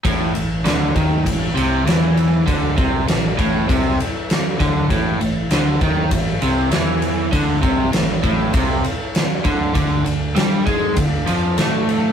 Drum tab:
RD |xxxxxxxx|xxxxxxxx|xxxxxxxx|xxxxxxxx|
SD |--o---o-|--o---oo|--o---o-|--o---o-|
BD |o--oo---|oo-oo--o|o--oo---|oo-oo--o|

RD |xxxxxxxx|
SD |--o---o-|
BD |o--oo---|